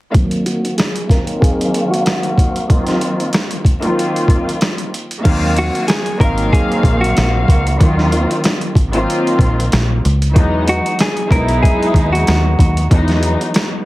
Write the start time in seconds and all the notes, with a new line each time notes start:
0.11 D#3 F#3 A#3 C4 F5, kick, closed hi-hat
0.31 closed hi-hat
0.46 F#4, closed hi-hat
0.65 closed hi-hat
0.78 G#4, snare, closed hi-hat
0.96 closed hi-hat
1.08 D#3 F#3 A#3 C4 A#4 F5, kick, snare, closed hi-hat
1.27 closed hi-hat
1.41 G#4, kick, closed hi-hat
1.61 closed hi-hat
1.74 closed hi-hat
1.91 F#4, closed hi-hat
2.06 snare, closed hi-hat
2.23 closed hi-hat
2.38 kick, closed hi-hat
2.56 closed hi-hat
2.67 D#3 F#3 A#3 C4 F4, kick, closed hi-hat
2.87 snare, closed hi-hat
3.01 closed hi-hat
3.20 closed hi-hat
3.33 snare, closed hi-hat
3.51 closed hi-hat
3.65 kick, closed hi-hat
3.81 D#3 F#3 A#3 C4 F4, closed hi-hat
3.99 closed hi-hat
4.16 closed hi-hat
4.28 kick, closed hi-hat
4.49 closed hi-hat
4.61 snare, closed hi-hat
4.78 closed hi-hat
4.94 closed hi-hat
5.11 closed hi-hat
5.22 D#2 D#3 F#3 A#3 C4 F5, kick, closed hi-hat, crash
5.57 F#4, closed hi-hat
5.75 closed hi-hat
5.88 G#4, snare, closed hi-hat
6.06 closed hi-hat
6.19 G#1 D#3 F#3 A#3 C4 A#4 F5, kick, closed hi-hat
6.38 closed hi-hat
6.53 G#4, kick, closed hi-hat
6.72 closed hi-hat
6.83 A#1, kick, closed hi-hat
7.01 F#4, closed hi-hat
7.17 A#1, snare, closed hi-hat
7.48 C#2, kick, closed hi-hat
7.67 closed hi-hat
7.78 D#2 D#3 F#3 A#3 C4 F4, kick, closed hi-hat
7.99 snare
8.12 closed hi-hat
8.31 closed hi-hat
8.44 snare, closed hi-hat
8.61 closed hi-hat
8.75 G#1, kick, closed hi-hat
8.92 D#3 F#3 A#3 C4 F4, closed hi-hat
9.10 closed hi-hat
9.27 closed hi-hat
9.39 A#1, kick, closed hi-hat
9.60 closed hi-hat
9.72 A#1, snare, closed hi-hat
10.05 C#2, closed hi-hat
10.22 closed hi-hat
10.34 E2 E3 F#3 G#3 B3 D#4, kick, closed hi-hat
10.68 F#4, closed hi-hat
10.86 closed hi-hat
10.99 G#4, snare, closed hi-hat
11.17 closed hi-hat
11.30 B1 F#3 G#3 B3 D#4 E4 A#4, kick, closed hi-hat
11.48 closed hi-hat
11.63 G#4, kick, closed hi-hat
11.82 closed hi-hat
11.94 D#2, kick, closed hi-hat
12.13 F#4, closed hi-hat
12.27 D#2, snare, closed hi-hat
12.59 D#2, kick, closed hi-hat
12.77 closed hi-hat
12.91 E2 E3 F#3 G#3 B3 D#4, kick, closed hi-hat
13.08 snare, closed hi-hat
13.23 closed hi-hat
13.41 closed hi-hat
13.54 snare, closed hi-hat